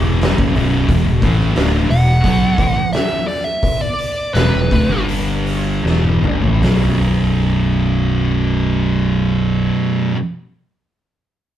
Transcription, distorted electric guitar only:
Already playing: E2 B2 E3
0.36 F#2 C#3
0.54 B1 F#2 B2
0.89 E2 B2
1.06 E2 B2
1.23 A2 E3 A3
1.55 D2 A2 D3
1.89 E2 B2
2.23 B2 F#3 B3
2.58 A2 E3
4.34 E2 B2
4.53 E2 B2
4.72 D2 A2
4.90 G2 D3 G3
5.84 E2 B2 E3
6.23 G2 D3
6.43 A2 E3
6.62 B1 F#2
6.66 B2

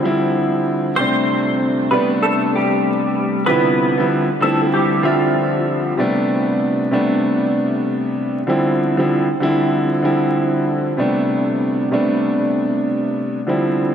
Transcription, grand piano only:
0.03 D3 F3 G3 C4 E4
0.97 C3 G3 A3 C4 D4
1.91 C3 G3 A3 B3 D4
3.47 C3 D3 F3 G3 E4
3.97 D3 F3 G3 C4 E4
4.40 D3 F3 G3 C4 E4
5.02 D3 F3 G3 C4 E5
5.97 C3 G3 A3 B3 D4
6.91 C3 G3 A3 B3 D4
8.47 D3 F3 G3 C4 E4
8.97 D3 F3 G3 C4 E4
9.40 D3 F3 G3 C4 E4
10.02 D3 F3 G3 C4 E4
10.97 C3 G3 A3 B3 D4
11.91 C3 G3 A3 B3 D4
13.47 D3 F3 G3 C4 E4

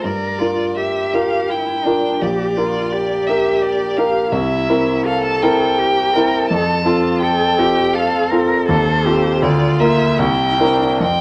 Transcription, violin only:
0.04 D5
0.77 E5
1.14 F5
1.50 G5
2.22 D5
3.27 E5
3.62 D5
3.97 F5
4.32 E5
5.05 F5
5.24 A5
5.42 G5
6.49 A5
7.21 G5
7.93 F5
8.67 C5
9.42 D5
9.80 E5
10.19 G5
11.01 G5

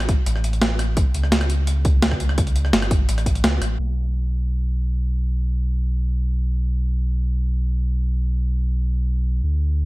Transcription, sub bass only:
Already playing: A1
0.26 A1
1.15 C#2
2.73 G1
3.08 A1
3.44 C#2
3.61 A1
3.79 B1
9.44 D2

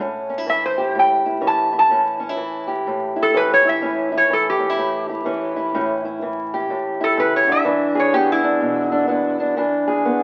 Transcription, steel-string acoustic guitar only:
0.00 A2 C#4
0.30 C#4
0.38 E4
0.47 E3
0.78 G4
0.95 A2
1.26 E4
1.41 E3 C#4
1.73 E4
1.90 A2 C#4
2.20 C#4
2.29 E4
2.37 E3
2.67 G4
2.87 A2
3.16 E4
3.34 E3 C#4
3.65 E4
3.81 A2 C#4
4.12 E4
4.30 E3
4.60 C#4
4.70 E4
4.77 A2
5.09 E4
5.25 E3 C#4
5.56 E4
5.74 A2 C#4
6.05 E4
6.22 E3
6.54 G4
6.70 A2
7.01 E4
7.17 C#3
7.47 D3
7.65 E3 D4
7.95 G#4
8.13 B3
8.44 D4
8.60 B2
8.92 D4
9.08 B3 D4
9.40 D4
9.57 E3 D4
9.88 G#4
10.05 B3

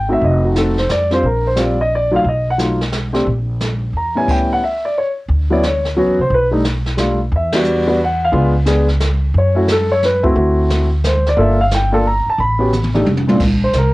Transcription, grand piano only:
Already playing: G5
0.08 A3 C4 D#4 F#4
0.13 E5
0.24 D#5
0.45 F#4
0.55 A3 C4 D#4 F#4 A4
0.79 C5
0.91 D5
1.10 G3 C4 D4 F4 C5
1.26 A#4
1.47 C5
1.56 G3 C4 D4 F4
1.60 D5
1.81 D#5
1.95 D5
2.11 F#3 A3 D#4 F4
2.16 F5
2.28 D#5
2.50 F#5
2.58 F#3 A3 D#4 F4
3.13 A3 C4 D4 G4
3.97 A#5
4.15 A2 G3 B3 C#4 E4 G#5
4.31 G5
4.53 F#5
4.64 E5
4.85 D5
4.98 C#5
5.50 F#3 B3 C#4 E4 D5
5.66 C#5
5.96 F#3 B3 C#4 F#4
6.21 C5
6.34 B4
6.51 G3 A3 D4 D#4
6.97 G3 A3 D4 F4
7.36 E5
7.53 G3 B3 D4 F#4 D5
7.87 G3 B3 D4 F#4
8.04 F#5
8.25 F5
8.32 G#3 B3 D4 F4
8.66 G#3 B3 D4 G#4
9.38 C#5
9.55 A3 C#4 E4 F#4
9.72 A4
9.92 C#5
10.05 B4
10.23 A3 C4 E4 F#4
10.34 A3 C4 E4 F#4
11.07 C5
11.29 D5
11.37 A#3 D4 F4 A4 E5
11.61 F5
11.74 G5
11.92 A#3 D4 F4 A4 A5
12.07 A#5
12.30 A5
12.40 B5
12.59 B3 C#4 F#4 G4
12.94 A3 D4 D#4 G4
13.28 A#2 A3 C4 D4 F4
13.64 C5
13.78 A#4

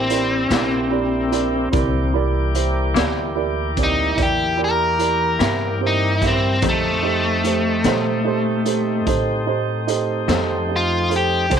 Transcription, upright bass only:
Already playing: A1
0.50 A#1
1.73 C2
2.95 D2
4.17 E2
5.40 G2
6.62 F2
7.84 A#2
9.07 A2
10.28 F2
11.51 C2

